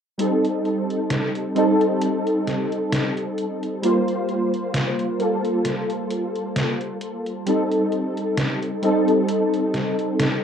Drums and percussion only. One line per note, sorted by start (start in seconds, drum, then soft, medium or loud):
0.19 closed hi-hat medium
0.45 closed hi-hat soft
0.65 closed hi-hat soft
0.90 closed hi-hat soft
1.10 snare loud
1.10 closed hi-hat medium
1.35 closed hi-hat soft
1.56 closed hi-hat medium
1.81 closed hi-hat soft
2.01 closed hi-hat medium
2.27 closed hi-hat soft
2.47 snare medium
2.47 closed hi-hat medium
2.72 closed hi-hat soft
2.92 snare loud
2.92 closed hi-hat medium
3.17 closed hi-hat soft
3.38 closed hi-hat medium
3.63 closed hi-hat soft
3.83 closed hi-hat medium
4.08 closed hi-hat soft
4.29 closed hi-hat soft
4.54 closed hi-hat soft
4.74 snare loud
4.74 closed hi-hat medium
4.99 closed hi-hat soft
5.20 closed hi-hat medium
5.45 closed hi-hat soft
5.65 snare medium
5.65 closed hi-hat medium
5.90 closed hi-hat soft
6.10 closed hi-hat medium
6.35 closed hi-hat soft
6.56 snare loud
6.56 closed hi-hat medium
6.81 closed hi-hat soft
7.01 closed hi-hat medium
7.26 closed hi-hat soft
7.47 closed hi-hat medium
7.71 closed hi-hat soft
7.92 closed hi-hat soft
8.17 closed hi-hat soft
8.37 snare loud
8.37 closed hi-hat medium
8.63 closed hi-hat soft
8.83 closed hi-hat medium
9.08 closed hi-hat soft
9.28 closed hi-hat medium
9.54 closed hi-hat soft
9.74 snare medium
9.74 closed hi-hat medium
9.99 closed hi-hat soft
10.20 snare loud
10.20 closed hi-hat medium